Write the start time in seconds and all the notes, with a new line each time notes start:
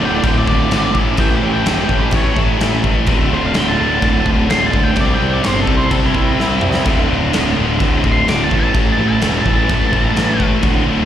0.00 D1 D2 A2 D3 A3 F4
0.04 G5
0.15 D5
0.23 D1 D2 A2 D3 G5, kick, crash
0.38 D5
0.47 D1 D2 A2 D3 D5, kick
0.71 G#1 D2 A2 D3 A3 F4, snare, crash
0.95 A1 A2 E3 A3 C#4 E4 A4, kick
1.17 A1 A2 E3 A3 G5, kick, crash
1.35 G4
1.42 A1 A2 E3 A3
1.53 G5
1.65 E1 A2 E3 A3 C#4 E4 G4, snare, crash
1.69 A4
1.84 G5
1.88 A1 A2 E3 A3, kick
2.00 G4
2.11 A1 A2 E3 A3, kick, crash
2.16 C#5
2.36 A1 A2 E3 A3 C#4 E4 A4, kick
2.59 A1 A2 E3 A3, snare, crash
2.84 A2 E3 A3, kick
3.06 D1 D2 A2 D3 A3 F4, kick, crash
3.32 D1 D2 A2 D3 C5
3.45 F5
3.54 D1 D2 A2 D3 G5, snare, crash
3.68 A5
3.76 D1 A3 F4
3.80 D2 A2 D3
4.02 D1 D2 A2 D3 A5, kick, crash
4.26 D1 D2 A2 D3, kick
4.50 D1 D2 A2 D3 A3 F4 C6, snare, crash
4.66 A5
4.71 D2 A2, kick
4.75 A2 D3
4.83 G5
4.94 C2 C3 C4 E4, kick, crash
4.98 C3 G3 C4 G4 C5 D5
5.14 G5
5.21 C2 C3 G3 C4
5.33 D5
5.43 G1 C3 G3 C4 C5, snare, crash
5.62 A4 C5
5.66 C2 C3 G3 C4 E4 G4, kick
5.77 C5
5.91 C2 C3 G3 C4 A4, kick, crash
6.06 E4
6.14 C2 C3 G3 C4, kick
6.37 C2 C3 G3 C4 E4 G4 C5, snare
6.60 C3 G3 C4, mid tom
6.74 snare
6.84 D1 D2 A2 D3 A3 F4, kick, crash
7.09 D1 D2 A2 D3
7.32 D1 D2 A2 D3, snare, crash
7.55 D2 A2 D3 A3 F4
7.59 D1
7.80 D1 D2 A2 D3, kick, crash
8.03 D1 D2 A2 D3, kick
8.12 C6
8.26 D1 D2 A2 D3 A3 F4 D6, snare, crash
8.44 A5
8.50 A1 A2 E3 A3 C#4 E4 A4, kick
8.59 A5
8.74 A1 A2 E3 A3, kick, crash
8.92 A5
8.98 A1 A2 E3 A3
9.08 A5
9.21 E1 A2 E3 A3 C#4 E4 A4, snare, crash
9.40 A5
9.45 A1 A2 E3 A3, kick
9.55 A5
9.69 A1 A2 E3 A3, kick, crash
9.91 A1 A2 E3 A3 C#4 E4 A4, kick
10.16 A1 A2 E3 A3, snare, crash
10.38 A2 E3 A3, kick
10.63 D1 D2 A2 D3 A3 F4, kick, crash
10.86 D1 D2 A2 D3